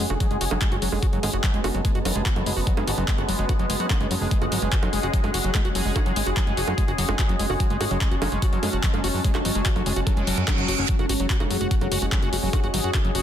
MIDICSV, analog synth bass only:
0, 0, Header, 1, 2, 480
1, 0, Start_track
1, 0, Key_signature, 3, "minor"
1, 0, Tempo, 410959
1, 1198, Time_signature, 4, 2, 24, 8
1, 15444, End_track
2, 0, Start_track
2, 0, Title_t, "Analog synth bass"
2, 0, Program_c, 0, 38
2, 118, Note_on_c, 0, 30, 98
2, 191, Note_off_c, 0, 30, 0
2, 358, Note_on_c, 0, 30, 88
2, 431, Note_off_c, 0, 30, 0
2, 478, Note_on_c, 0, 30, 98
2, 551, Note_off_c, 0, 30, 0
2, 598, Note_on_c, 0, 30, 90
2, 671, Note_off_c, 0, 30, 0
2, 838, Note_on_c, 0, 30, 88
2, 911, Note_off_c, 0, 30, 0
2, 958, Note_on_c, 0, 30, 96
2, 1031, Note_off_c, 0, 30, 0
2, 1078, Note_on_c, 0, 30, 90
2, 1151, Note_off_c, 0, 30, 0
2, 1318, Note_on_c, 0, 30, 87
2, 1391, Note_off_c, 0, 30, 0
2, 1438, Note_on_c, 0, 32, 103
2, 1511, Note_off_c, 0, 32, 0
2, 1558, Note_on_c, 0, 30, 95
2, 1631, Note_off_c, 0, 30, 0
2, 1798, Note_on_c, 0, 30, 89
2, 1871, Note_off_c, 0, 30, 0
2, 1918, Note_on_c, 0, 30, 101
2, 1991, Note_off_c, 0, 30, 0
2, 2038, Note_on_c, 0, 30, 95
2, 2111, Note_off_c, 0, 30, 0
2, 2278, Note_on_c, 0, 30, 86
2, 2351, Note_off_c, 0, 30, 0
2, 2398, Note_on_c, 0, 30, 99
2, 2471, Note_off_c, 0, 30, 0
2, 2518, Note_on_c, 0, 30, 92
2, 2591, Note_off_c, 0, 30, 0
2, 2758, Note_on_c, 0, 30, 86
2, 2831, Note_off_c, 0, 30, 0
2, 2878, Note_on_c, 0, 30, 97
2, 2951, Note_off_c, 0, 30, 0
2, 2998, Note_on_c, 0, 30, 90
2, 3071, Note_off_c, 0, 30, 0
2, 3238, Note_on_c, 0, 30, 83
2, 3311, Note_off_c, 0, 30, 0
2, 3358, Note_on_c, 0, 32, 97
2, 3431, Note_off_c, 0, 32, 0
2, 3478, Note_on_c, 0, 30, 92
2, 3550, Note_off_c, 0, 30, 0
2, 3718, Note_on_c, 0, 30, 86
2, 3791, Note_off_c, 0, 30, 0
2, 3838, Note_on_c, 0, 30, 98
2, 3911, Note_off_c, 0, 30, 0
2, 3958, Note_on_c, 0, 30, 93
2, 4031, Note_off_c, 0, 30, 0
2, 4198, Note_on_c, 0, 30, 85
2, 4271, Note_off_c, 0, 30, 0
2, 4318, Note_on_c, 0, 30, 96
2, 4391, Note_off_c, 0, 30, 0
2, 4438, Note_on_c, 0, 42, 95
2, 4511, Note_off_c, 0, 42, 0
2, 4678, Note_on_c, 0, 30, 87
2, 4750, Note_off_c, 0, 30, 0
2, 4798, Note_on_c, 0, 30, 102
2, 4870, Note_off_c, 0, 30, 0
2, 4918, Note_on_c, 0, 30, 93
2, 4990, Note_off_c, 0, 30, 0
2, 5158, Note_on_c, 0, 30, 85
2, 5231, Note_off_c, 0, 30, 0
2, 5278, Note_on_c, 0, 32, 98
2, 5351, Note_off_c, 0, 32, 0
2, 5398, Note_on_c, 0, 30, 98
2, 5470, Note_off_c, 0, 30, 0
2, 5638, Note_on_c, 0, 30, 88
2, 5710, Note_off_c, 0, 30, 0
2, 5758, Note_on_c, 0, 30, 101
2, 5830, Note_off_c, 0, 30, 0
2, 5878, Note_on_c, 0, 30, 93
2, 5950, Note_off_c, 0, 30, 0
2, 6118, Note_on_c, 0, 30, 89
2, 6191, Note_off_c, 0, 30, 0
2, 6238, Note_on_c, 0, 30, 96
2, 6311, Note_off_c, 0, 30, 0
2, 6358, Note_on_c, 0, 30, 93
2, 6430, Note_off_c, 0, 30, 0
2, 6598, Note_on_c, 0, 30, 87
2, 6670, Note_off_c, 0, 30, 0
2, 6718, Note_on_c, 0, 30, 97
2, 6791, Note_off_c, 0, 30, 0
2, 6838, Note_on_c, 0, 30, 96
2, 6910, Note_off_c, 0, 30, 0
2, 7078, Note_on_c, 0, 30, 83
2, 7150, Note_off_c, 0, 30, 0
2, 7197, Note_on_c, 0, 32, 101
2, 7270, Note_off_c, 0, 32, 0
2, 7318, Note_on_c, 0, 30, 97
2, 7390, Note_off_c, 0, 30, 0
2, 7558, Note_on_c, 0, 30, 86
2, 7630, Note_off_c, 0, 30, 0
2, 7678, Note_on_c, 0, 30, 98
2, 7750, Note_off_c, 0, 30, 0
2, 7798, Note_on_c, 0, 30, 91
2, 7871, Note_off_c, 0, 30, 0
2, 8038, Note_on_c, 0, 30, 86
2, 8110, Note_off_c, 0, 30, 0
2, 8158, Note_on_c, 0, 30, 99
2, 8230, Note_off_c, 0, 30, 0
2, 8278, Note_on_c, 0, 30, 96
2, 8350, Note_off_c, 0, 30, 0
2, 8518, Note_on_c, 0, 30, 87
2, 8590, Note_off_c, 0, 30, 0
2, 8638, Note_on_c, 0, 30, 102
2, 8710, Note_off_c, 0, 30, 0
2, 8758, Note_on_c, 0, 30, 95
2, 8831, Note_off_c, 0, 30, 0
2, 8998, Note_on_c, 0, 30, 82
2, 9071, Note_off_c, 0, 30, 0
2, 9118, Note_on_c, 0, 32, 99
2, 9191, Note_off_c, 0, 32, 0
2, 9238, Note_on_c, 0, 30, 97
2, 9311, Note_off_c, 0, 30, 0
2, 9478, Note_on_c, 0, 30, 89
2, 9551, Note_off_c, 0, 30, 0
2, 9598, Note_on_c, 0, 30, 99
2, 9670, Note_off_c, 0, 30, 0
2, 9718, Note_on_c, 0, 30, 95
2, 9791, Note_off_c, 0, 30, 0
2, 9958, Note_on_c, 0, 30, 88
2, 10031, Note_off_c, 0, 30, 0
2, 10078, Note_on_c, 0, 30, 99
2, 10151, Note_off_c, 0, 30, 0
2, 10198, Note_on_c, 0, 30, 92
2, 10271, Note_off_c, 0, 30, 0
2, 10438, Note_on_c, 0, 30, 89
2, 10510, Note_off_c, 0, 30, 0
2, 10558, Note_on_c, 0, 30, 97
2, 10631, Note_off_c, 0, 30, 0
2, 10678, Note_on_c, 0, 30, 90
2, 10751, Note_off_c, 0, 30, 0
2, 10918, Note_on_c, 0, 30, 82
2, 10991, Note_off_c, 0, 30, 0
2, 11038, Note_on_c, 0, 32, 101
2, 11110, Note_off_c, 0, 32, 0
2, 11158, Note_on_c, 0, 30, 93
2, 11231, Note_off_c, 0, 30, 0
2, 11398, Note_on_c, 0, 30, 87
2, 11471, Note_off_c, 0, 30, 0
2, 11518, Note_on_c, 0, 30, 98
2, 11591, Note_off_c, 0, 30, 0
2, 11638, Note_on_c, 0, 30, 92
2, 11711, Note_off_c, 0, 30, 0
2, 11878, Note_on_c, 0, 30, 88
2, 11951, Note_off_c, 0, 30, 0
2, 11998, Note_on_c, 0, 30, 101
2, 12071, Note_off_c, 0, 30, 0
2, 12118, Note_on_c, 0, 42, 92
2, 12191, Note_off_c, 0, 42, 0
2, 12358, Note_on_c, 0, 30, 86
2, 12430, Note_off_c, 0, 30, 0
2, 12478, Note_on_c, 0, 30, 103
2, 12551, Note_off_c, 0, 30, 0
2, 12598, Note_on_c, 0, 30, 92
2, 12671, Note_off_c, 0, 30, 0
2, 12838, Note_on_c, 0, 30, 84
2, 12911, Note_off_c, 0, 30, 0
2, 12958, Note_on_c, 0, 32, 99
2, 13031, Note_off_c, 0, 32, 0
2, 13078, Note_on_c, 0, 30, 95
2, 13151, Note_off_c, 0, 30, 0
2, 13318, Note_on_c, 0, 30, 87
2, 13391, Note_off_c, 0, 30, 0
2, 13438, Note_on_c, 0, 30, 100
2, 13510, Note_off_c, 0, 30, 0
2, 13558, Note_on_c, 0, 30, 93
2, 13630, Note_off_c, 0, 30, 0
2, 13798, Note_on_c, 0, 30, 83
2, 13870, Note_off_c, 0, 30, 0
2, 13918, Note_on_c, 0, 30, 100
2, 13991, Note_off_c, 0, 30, 0
2, 14038, Note_on_c, 0, 30, 91
2, 14110, Note_off_c, 0, 30, 0
2, 14278, Note_on_c, 0, 30, 86
2, 14351, Note_off_c, 0, 30, 0
2, 14398, Note_on_c, 0, 30, 99
2, 14470, Note_off_c, 0, 30, 0
2, 14518, Note_on_c, 0, 30, 91
2, 14590, Note_off_c, 0, 30, 0
2, 14758, Note_on_c, 0, 30, 87
2, 14831, Note_off_c, 0, 30, 0
2, 14878, Note_on_c, 0, 32, 102
2, 14951, Note_off_c, 0, 32, 0
2, 14998, Note_on_c, 0, 30, 96
2, 15071, Note_off_c, 0, 30, 0
2, 15238, Note_on_c, 0, 30, 86
2, 15311, Note_off_c, 0, 30, 0
2, 15358, Note_on_c, 0, 30, 96
2, 15430, Note_off_c, 0, 30, 0
2, 15444, End_track
0, 0, End_of_file